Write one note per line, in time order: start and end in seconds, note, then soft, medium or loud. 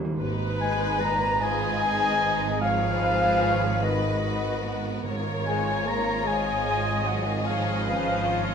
0.05 0.12 D#3 loud
0.17 5.01 G#1 medium
0.17 5.01 G#2 medium
0.17 1.38 D#4 medium
0.17 1.38 B4 loud
0.17 2.59 B4 medium
0.17 1.38 B4 medium
0.59 0.97 G#3 loud
0.59 1.02 G#5 medium
0.59 1.03 G#5 loud
1.01 1.41 A#2 medium
1.01 1.42 A#5 loud
1.01 1.45 A#5 loud
1.40 2.62 G#3 medium
1.40 1.83 F4 medium
1.40 2.63 G#4 medium
1.40 2.62 D#5 loud
1.40 2.62 G#5 loud
1.40 2.61 G#5 loud
1.83 2.23 D#4 medium
2.24 2.62 D#4 medium
2.61 3.80 F3 loud
2.61 3.84 G#4 medium
2.61 5.02 B4 medium
2.61 3.03 C#5 medium
2.61 3.85 F5 loud
3.03 3.43 B4 medium
3.42 3.82 C#5 medium
3.83 5.05 D#3 medium
3.83 5.05 F#4 medium
3.83 4.22 B4 medium
3.83 5.05 D#5 medium
4.24 4.64 B4 medium
4.64 5.04 B3 medium
4.64 6.26 A#4 medium
5.04 8.54 G#1 medium
5.04 6.22 G#2 medium
5.04 8.54 G#2 medium
5.04 7.46 F4 medium
5.04 6.26 C#5 loud
5.04 7.42 C#5 medium
5.45 5.83 G#3 loud
5.45 5.88 G#5 medium
5.45 5.90 G#5 loud
5.86 6.26 A#3 medium
5.86 6.28 A#5 loud
5.86 6.29 A#5 loud
6.24 7.05 G#3 medium
6.24 8.54 G#4 medium
6.24 7.46 D#5 loud
6.24 7.10 G#5 loud
6.24 7.09 G#5 loud
7.04 7.25 F#3 medium
7.04 7.30 F#5 medium
7.09 7.30 F#5 medium
7.26 7.46 D#3 medium
7.26 7.46 D#5 medium
7.26 7.47 D#5 medium
7.45 8.54 F3 loud
7.45 7.84 C#5 medium
7.45 8.54 D#5 medium
7.45 8.54 F5 loud
7.49 7.87 D#4 medium
7.84 8.25 B4 medium
7.89 8.26 C#4 medium
8.25 8.54 F4 medium
8.25 8.54 C#5 loud